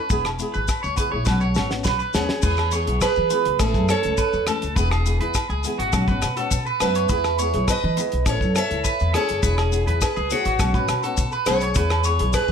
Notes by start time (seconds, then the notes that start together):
Already playing: B4
0.10 E1 B3 E4 G#4, kick, maracas
0.25 cross-stick, low agogo, maracas
0.39 B3 E4 G#4, closed hi-hat, maracas
0.54 G#1 B4, maracas
0.68 kick, cross-stick, low agogo, maracas
0.83 C#2 C#5, maracas
0.96 B3 E4 G#4 B4, kick, closed hi-hat, maracas
1.12 A#1 E4 G#4 C#5
1.25 B1 F#3 B3 C#4 B4, kick, snare, low agogo, maracas
1.29 F#4
1.41 C#5, maracas
1.55 G#1 F#3 B3 C#4 F#4, snare, low agogo, maracas
1.70 B3 C#4 F#4, snare, maracas
1.84 B1 B4, kick, snare, maracas
1.99 B4, maracas
2.14 D#2 F#3 B3 C#4 F#4 G#4 C#5, snare, low agogo, maracas
2.29 snare
2.42 E2 E3 E4 G#4 B4, muted nylon-string guitar stroke, kick, crash, maracas
2.57 cross-stick, low agogo, maracas
2.71 E3 B3 G#4 C#5, muted nylon-string guitar stroke, closed hi-hat, maracas
2.86 B1 B3 E4 G#4, closed hi-hat
3.01 G#4 B4, kick, cross-stick, closed hi-hat, low agogo, maracas
3.16 E3, maracas
3.30 E3 B3 E4 G#4 B4, closed hi-hat, maracas
3.45 C#2, closed hi-hat
3.58 A1 E3 A3 C#4 E4 G#4 A4, kick, cross-stick, closed hi-hat, low agogo, maracas
3.74 F#2 A3 C#4 A4, kick, maracas
3.89 A4 C#5, cross-stick, closed hi-hat, low agogo, maracas
4.03 C#2 A3 C#4 A4, closed hi-hat, maracas
4.17 B4, kick, closed hi-hat, maracas
4.33 E2, maracas
4.47 E3 A3 C#4 A4, cross-stick, closed hi-hat, low agogo, maracas
4.62 C#2, closed hi-hat, maracas
4.75 E1 E3 B3 E4 G#4 B4, kick, closed hi-hat, maracas
4.91 G#4, cross-stick, low agogo, maracas
5.04 E3 B3 E4 G#4, closed hi-hat, maracas
5.20 E2 B3 E4 G#4 B4, closed hi-hat
5.34 kick, cross-stick, closed hi-hat, low agogo, maracas
5.49 C#2 G#4, maracas
5.64 E3 B3 E4 G#4, closed hi-hat, maracas
5.79 G#1 F#4, closed hi-hat
5.93 B1 F#3 B3 C#4 F#4, kick, cross-stick, closed hi-hat, low agogo, maracas
6.08 G#1 B3 C#4 F#4 B4, kick, maracas
6.22 B2, cross-stick, closed hi-hat, low agogo, maracas
6.37 B3 C#4 F#4 A4, closed hi-hat, maracas
6.51 B2, kick, closed hi-hat, maracas
6.66 B4, maracas
6.80 F#2 F#3 B3 C#4 F#4 B4 E5, cross-stick, closed hi-hat, low agogo, maracas
6.95 C#5, closed hi-hat, maracas
7.09 E2 B3 E4 G#4 B4, kick, closed hi-hat, maracas
7.24 cross-stick, low agogo, maracas
7.39 B3 E4 G#4 C#5, closed hi-hat, maracas
7.54 B1 E4 G#4, closed hi-hat
7.68 B4 D#5, kick, cross-stick, closed hi-hat, low agogo, maracas
7.84 E3
7.97 B3 E4 G#4, muted clean electric guitar stroke, closed hi-hat, maracas
8.12 B1, closed hi-hat
8.26 A1 C#4 E4 A4 C#5, muted clean electric guitar stroke, kick, cross-stick, closed hi-hat, low agogo, maracas
8.41 F#2 E4 A4, kick, maracas
8.55 A4 C#5 E5, cross-stick, closed hi-hat, low agogo, maracas
8.70 C#2 E4 A4, closed hi-hat, maracas
8.84 B4, kick, closed hi-hat, maracas
9.00 E2, maracas
9.13 C#4 E4 G#4 A4 C#5, cross-stick, closed hi-hat, low agogo
9.29 F#1, closed hi-hat, maracas
9.42 E1 E4 G#4 B4, muted nylon-string guitar stroke, kick, closed hi-hat, maracas
9.58 G#4, cross-stick, low agogo
9.71 B3 E4 G#4, closed hi-hat, maracas
9.85 E2 E4 G#4 B4, closed hi-hat, maracas
10.01 G#4 B4, kick, cross-stick, closed hi-hat, low agogo, maracas
10.16 C#2 G#4, maracas
10.30 E4 F#4 G#4 C#5, closed hi-hat, maracas
10.45 G#1 F#4, closed hi-hat, maracas
10.59 B1 F#3 B3 C#4 F#4, kick, cross-stick, closed hi-hat, low agogo, maracas
10.74 G#1 C#4 B4, muted nylon-string guitar stroke, kick, maracas
10.78 B3
10.88 B2, cross-stick, closed hi-hat, low agogo, maracas
11.03 C#4 F#4 A4, closed hi-hat, maracas
11.07 B3
11.17 B2, kick, closed hi-hat, maracas
11.32 B4, maracas
11.46 B1 F#3 B3 C#4 G#4 C#5, cross-stick, closed hi-hat, low agogo, maracas
11.50 F#4
11.60 C#5, closed hi-hat, maracas
11.75 E2 B3 E4 G#4 B4, kick, closed hi-hat, maracas
11.90 cross-stick, low agogo, maracas
12.04 B3 E4 G#4 C#5, closed hi-hat, maracas
12.19 B1 E4 G#4, closed hi-hat
12.33 G#4 B4, kick, cross-stick, closed hi-hat, low agogo, maracas
12.48 E3, maracas